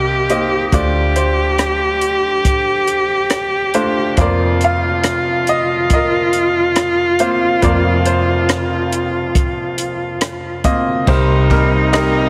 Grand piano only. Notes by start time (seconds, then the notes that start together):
Already playing: C2 C3 A#3 D#4 G4 A#4 C5 D#5
0.30 A#3 D#4 G4 C5 D#5
0.73 D2 D3 A3 D4 F4 C5 D5
1.16 C5
3.74 A3 D4 F4 C5
4.17 F1 F2 A#3 C4 F4 A#4 C5
4.21 D5
4.64 F5
5.49 D#5
5.93 A#4 D#5
7.20 A#3 C4 F4 C5 F5
7.62 F1 F2 A#3 C4 F4 C5 D5
7.67 A#4
8.06 C5
10.64 A#3 C4 F4 D#5
11.07 C2 C3 G3 C4 D#4 G4 A#4 C5
11.50 G3 C4 D#4 A#4
11.93 G4 A#4 D#5